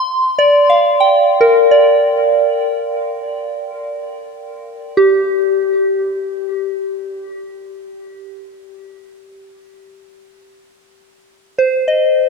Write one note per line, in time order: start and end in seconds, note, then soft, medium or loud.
0.00 3.28 C6 medium
0.39 1.70 D5 medium
0.70 4.07 F5 soft
1.00 4.35 G5 medium
1.41 4.81 A#4 medium
1.71 5.09 D5 medium
4.97 8.37 G4 medium
11.58 12.29 C5 soft
11.88 12.29 D#5 soft